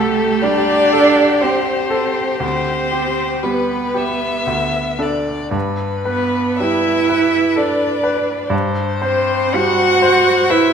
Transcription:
Already playing: C2 A3 G4 A4
0.42 G3 D4 D5
0.93 A4
1.41 C4 G4 C5
1.90 A4
2.40 D2 C4 C5
2.92 G4
3.43 G3 B3 B4
3.94 G4 E5
4.47 D2
4.99 D4 A4 D5
5.51 G2
5.55 B4
6.05 B3 B4
6.60 G3 E4 E5
7.09 B4
7.56 D4 A4 D5
8.04 B4
8.50 G2 C5
9.02 C4 C5
9.53 G3 F#4 F#5
10.02 C5
10.50 E4 B4 E5

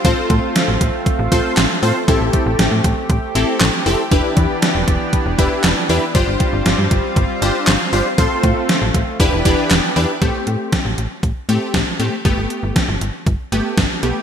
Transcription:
Already playing: C4 F4
0.05 A1 A3 C4 F4 A4 C5, kick, closed hi-hat
0.30 A2, kick, closed hi-hat
0.56 snare, closed hi-hat
0.68 A1
0.81 A1, kick, closed hi-hat
1.06 kick, closed hi-hat
1.19 A1
1.32 A1 C4 F4 A4 C5, kick, closed hi-hat
1.57 A1, snare, clap, closed hi-hat
1.83 A2 C4 F4 A4 C5, open hi-hat
2.08 A1 C4 E4 G4 A4, kick, closed hi-hat
2.21 A1
2.33 kick, closed hi-hat
2.46 A1
2.59 A1, snare, closed hi-hat
2.72 A2
2.84 A1, kick, closed hi-hat
3.10 A1, kick, closed hi-hat
3.35 A1 C4 E4 G4 A4, closed hi-hat
3.61 A1, snare, clap, closed hi-hat
3.86 F1 C4 E4 G4 A4, open hi-hat
4.11 E1 E3 B3 D4 E4 G4 B4, kick, closed hi-hat
4.37 E2, kick, closed hi-hat
4.62 snare, closed hi-hat
4.75 E1
4.88 E1, kick, closed hi-hat
5.13 kick, closed hi-hat
5.26 E1
5.39 E1 D4 E4 G4 B4, kick, closed hi-hat
5.64 E1, snare, clap, closed hi-hat
5.89 E2 D4 E4 G4 B4, open hi-hat
6.15 G1 G3 C4 D4 F4 G4 C5, kick, closed hi-hat
6.28 G1
6.40 kick, closed hi-hat
6.53 G1
6.66 G1, snare, closed hi-hat
6.78 G2
6.91 G1, kick, closed hi-hat
7.16 G1, kick, closed hi-hat
7.42 G1 D4 F4 G4 C5, closed hi-hat
7.67 G1, snare, clap, closed hi-hat
7.93 G1 D4 F4 G4 C5, open hi-hat
8.18 A1 A3 C4 F4 A4 C5, kick, closed hi-hat
8.43 A2, kick, closed hi-hat
8.69 snare, closed hi-hat
8.82 A1
8.94 A1, kick, closed hi-hat
9.20 E1 E3 B3 D4 E4 G4 B4, kick, closed hi-hat
9.33 E1
9.45 E1 D4 E4 G4 B4, kick, closed hi-hat
9.71 E1, snare, clap, closed hi-hat
9.96 E2 D4 E4 G4 B4, open hi-hat
10.22 A1 A3 C4 G4, kick, closed hi-hat
10.47 A2, closed hi-hat
10.72 kick, snare, closed hi-hat
10.85 A1
10.98 A1, closed hi-hat
11.23 A1, kick, closed hi-hat
11.49 A2 A3 C4 G4, closed hi-hat
11.74 A1, kick, snare, closed hi-hat
12.00 A2 A3 C4 G4, closed hi-hat
12.25 G1 A3 B3 G4, kick, closed hi-hat
12.38 G1
12.50 closed hi-hat
12.63 G1
12.76 kick, snare, closed hi-hat
12.89 G1
13.01 G1, closed hi-hat
13.27 G1, kick, closed hi-hat
13.52 G1 A3 B3 G4, closed hi-hat
13.78 G1, kick, snare, closed hi-hat
14.03 B1 A3 B3 G4, closed hi-hat

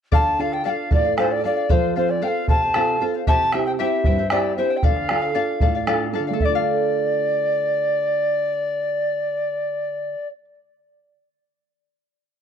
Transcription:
0.12 D3 A4 D5 F5 A5, bombo low
0.39 D4 F4 A4 D5 F5
0.52 D5 F5 G5, bombo rim
0.64 D4 F4 A4 D5 F5 G5
0.69 F5
0.91 A2 A4 D5 F5, bombo low
1.05 D5 F5
1.17 D4 F4 A4 C5 D5 F5, bombo rim
1.31 D5
1.44 D4 F4 A4 D5 F5
1.56 D5 F5
1.69 F3 A4 C5 F5, bombo low
1.96 C4 F4 A4 C5 F5
2.08 C5 D5 F5, bombo rim
2.22 C4 F4 A4 C5 F5 G5
2.28 F5
2.48 C3 A4 C5 F5 A5, bombo low
2.62 C5 F5
2.74 C4 F4 A4 C5 F5, bombo rim
3.01 C4 F4 A4 C5 F5
3.14 C5 F5
3.27 C3 E4 G4 C5 E5 G5 A5, bombo low
3.52 C4 E4 G4 C5 E5 G5, bombo rim
3.66 E4 C5 G5, bombo rim
3.78 C4 E4 G4 C5 E5 G5
4.04 G2 E4 C5 E5 G5, bombo low
4.18 E4 C5 G5
4.30 C4 E4 G4 C5 D5 E5 G5, bombo rim
4.57 C4 E4 G4 C5 E5 G5
4.70 E4 C5 G5
4.77 G5
4.83 D3 A4 D5 F5, bombo rim, bombo low
4.96 bombo rim
5.09 D4 F4 A4 D5 F5, bombo rim
5.22 D5 F5
5.35 D4 F4 A4 D5 F5
5.60 A2 A4 D5 F5, bombo low
5.75 D5 F5
5.87 D4 F4 A4 D5 F5, bombo rim
6.01 bombo rim
6.13 D4 F4 A4 D5 F5, bombo rim
6.20 D3
6.27 A3 D5 F5
6.33 A4
6.40 D4 E5, bombo low
6.44 D5
6.50 F4
6.55 F5
6.60 A4

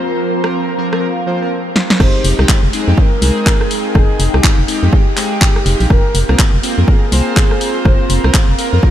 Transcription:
Already playing: F3 A#3 C4 F4 A#4 C5 F5 A#5
0.05 A#4
0.43 F3 A#3 C4 F4 A#4, cross-stick
0.78 F3 A#3 C4 F4 A#4
0.92 F3 A#3 C4 F4 A#4, cross-stick
1.03 F5
1.27 F3 A#3 C4 F4 C5
1.41 F3 A#3 C4 F4 A#4
1.76 snare
1.90 snare
2.00 F1 G#3 C4 D#4 G4 C5, kick, cross-stick, crash
2.16 G#3
2.24 F1, open hi-hat
2.37 C2 G#3 C4 D#4 G4 G5, cross-stick
2.49 kick, clap
2.63 F1 F5
2.73 G#3 C4 D#4 G#4, open hi-hat
2.87 F2 G#3 C4 D#4 G4
2.98 A#4, kick
3.21 C2 G#3 C4 D#4 G#4, open hi-hat
3.46 kick, clap
3.61 cross-stick
3.71 open hi-hat
3.95 F1 G#4, kick, cross-stick
4.20 F1, open hi-hat
4.34 C2 G#3 C4 D#4 G4, cross-stick
4.44 kick, clap
4.59 F1
4.68 G#3 C4 D#4 G4, open hi-hat
4.83 F2 G#3 C4 D#4 G4
4.93 G4, kick
5.17 G#3 C4 D#4 G#4, clap, open hi-hat
5.31 G#3 C4 D#4 G4
5.42 kick, clap
5.56 cross-stick
5.66 F1 G#3 C4 D#4 G4, open hi-hat
5.80 A#1, open hi-hat
5.90 F1 C4 A#4, kick, cross-stick
6.15 F1, open hi-hat
6.19 A#4
6.29 C2 A#3 C4 F4 A#4, cross-stick
6.39 kick, clap
6.54 F1
6.58 A#5
6.63 A#3 C4 F4 C5, open hi-hat
6.78 F2 A#3 C4 F4 A#4
6.88 G#4, kick
7.11 C2 A#3 C4 F4 C5, open hi-hat
7.37 kick, clap
7.51 cross-stick
7.61 open hi-hat
7.85 F1 C5, kick, cross-stick
8.10 F1, open hi-hat
8.24 C2 A#3 C4 F4 A#4, cross-stick
8.34 kick, clap
8.49 F1
8.58 A#3 C4 F4 A#4, open hi-hat
8.73 F2 A#3 C4 F4 A#4
8.83 F4, kick

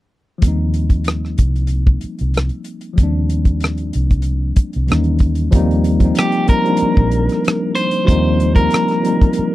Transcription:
0.38 F3 G3, closed hi-hat
0.42 D#2 A#3 C4, kick
0.48 D#4
0.74 closed hi-hat
0.90 kick, closed hi-hat
1.04 cross-stick, closed hi-hat
1.25 cross-stick
1.38 C2, kick, closed hi-hat
1.56 closed hi-hat
1.67 closed hi-hat
1.87 kick
2.01 muted fingered electric bass stroke, closed hi-hat
2.19 C2, closed hi-hat
2.34 cross-stick, closed hi-hat
2.49 closed hi-hat
2.65 closed hi-hat
2.81 closed hi-hat
2.93 F3 G3
2.98 D#2 A#3 C4, kick, closed hi-hat
3.03 D4
3.30 closed hi-hat
3.45 kick, closed hi-hat
3.60 cross-stick, closed hi-hat
3.78 closed hi-hat
3.93 C2, closed hi-hat
4.10 kick, closed hi-hat
4.22 closed hi-hat
4.56 muted fingered electric bass stroke, kick, closed hi-hat
4.73 C2, closed hi-hat
4.87 D#2 E3 G3 A#3, closed hi-hat
4.91 C#4 D#4, cross-stick
5.04 closed hi-hat
5.19 kick, closed hi-hat
5.35 closed hi-hat
5.51 D#2 F3 G3 A#3 C4, kick, closed hi-hat
5.56 D#4
5.71 closed hi-hat
5.84 closed hi-hat
6.00 F3 G3 A#3 C4, kick, closed hi-hat
6.05 D#4
6.15 G4, cross-stick, closed hi-hat
6.32 closed hi-hat
6.47 F3 G3 A#3 C4 A#4, kick, closed hi-hat
6.52 D#4
6.64 F3 G3 A#3 C4, closed hi-hat
6.68 D4
6.77 closed hi-hat
6.82 muted fingered electric bass stroke
6.97 A#1, kick
7.11 closed hi-hat
7.29 cross-stick, closed hi-hat
7.45 cross-stick, closed hi-hat
7.75 C5, closed hi-hat
7.91 closed hi-hat
8.05 F3 G3 A#3 C4 C5, kick, closed hi-hat
8.10 D#2 D#4
8.40 closed hi-hat
8.54 F3 G3 A#3 C4 A#4, kick, closed hi-hat
8.60 D#4
8.71 cross-stick, closed hi-hat
8.88 cross-stick, closed hi-hat
9.02 F3 G3 A#3 C4, closed hi-hat
9.07 D#4
9.21 kick, closed hi-hat
9.33 closed hi-hat
9.39 muted fingered electric bass stroke

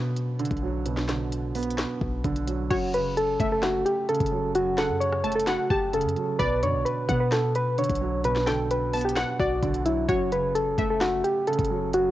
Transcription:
Already playing: B2 D3 B3
0.17 closed hi-hat
0.40 D3, closed hi-hat
0.45 closed hi-hat
0.51 B1, kick, closed hi-hat
0.57 closed hi-hat
0.62 F#3
0.86 B2, closed hi-hat
0.97 snare
1.09 D3, snare, clap, closed hi-hat
1.32 closed hi-hat
1.55 B3, closed hi-hat, open hi-hat
1.63 closed hi-hat
1.70 closed hi-hat
1.78 snare, clap, closed hi-hat
2.01 B1, kick
2.24 B1 D3, kick, closed hi-hat
2.36 closed hi-hat
2.47 F#3, closed hi-hat
2.70 F#1 F#2 F#4 C#5, kick, closed hi-hat, crash
2.94 C#3 B4, closed hi-hat
3.17 A4, closed hi-hat
3.40 F#1 A3 E5, kick, closed hi-hat
3.52 A4
3.62 F#4, snare, clap, closed hi-hat
3.85 G4, closed hi-hat
4.09 C#3 A4, closed hi-hat
4.15 closed hi-hat
4.20 F#1, kick, closed hi-hat
4.26 closed hi-hat
4.32 F#3
4.55 F#2 F#4, closed hi-hat
4.78 C#3 A4 F#5, snare, clap, closed hi-hat
4.90 F#2
5.01 C#5, closed hi-hat
5.13 cross-stick
5.24 F#1 A3 A5, closed hi-hat
5.32 A4, closed hi-hat
5.40 closed hi-hat
5.47 F#4 F#5, snare, clap, closed hi-hat
5.70 F#1 G4 A5, kick
5.93 C#3 A4, closed hi-hat
6.01 F#2, closed hi-hat
6.09 closed hi-hat
6.16 F#3, closed hi-hat
6.39 B1 B2 B4 D5, kick, closed hi-hat
6.63 F#2 D3 C#5, closed hi-hat
6.74 B1
6.85 B4, closed hi-hat
7.09 B2 B3 F#5, kick, closed hi-hat
7.20 B4
7.32 A4, snare, clap, closed hi-hat
7.55 B4, closed hi-hat
7.78 D3 C#5, closed hi-hat
7.84 closed hi-hat
7.90 B1, kick, closed hi-hat
7.95 closed hi-hat
8.01 F#3
8.24 B2 B4, closed hi-hat
8.36 snare
8.47 D3 A4 G5, snare, clap, closed hi-hat
8.71 B4, closed hi-hat
8.93 B3 A5, closed hi-hat, open hi-hat
9.01 G4, closed hi-hat
9.09 closed hi-hat
9.16 F#5, snare, clap, closed hi-hat
9.39 B1 F#4 D5, kick
9.63 B1 D3, kick, closed hi-hat
9.74 closed hi-hat
9.86 F#3 E4, closed hi-hat
10.09 F#1 F#2 F#4 C#5, kick, closed hi-hat
10.32 C#3 B4, closed hi-hat
10.55 A4, closed hi-hat
10.78 F#1 A3 E5, kick, closed hi-hat
10.90 A4
11.01 F#4, snare, clap, closed hi-hat
11.24 G4, closed hi-hat
11.47 C#3 A4, closed hi-hat
11.53 closed hi-hat
11.59 F#1, kick, closed hi-hat
11.65 closed hi-hat
11.70 F#3
11.93 F#2 F#4, closed hi-hat

